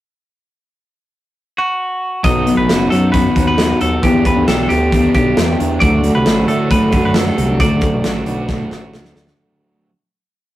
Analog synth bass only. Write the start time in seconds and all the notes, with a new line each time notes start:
2.24 B1
2.57 A1
2.69 F#1
2.92 F#2
3.36 D#2
3.82 D#2
4.03 E2
4.36 D2
4.48 B1
4.70 D2
5.15 B1
5.38 E2
5.60 E2
5.82 D2
6.16 C2
6.27 A1
6.49 A2
6.93 F#2
7.37 C2
7.60 D2
7.94 B1
8.05 A1
8.27 B1
8.71 A1
8.94 D2
9.15 D2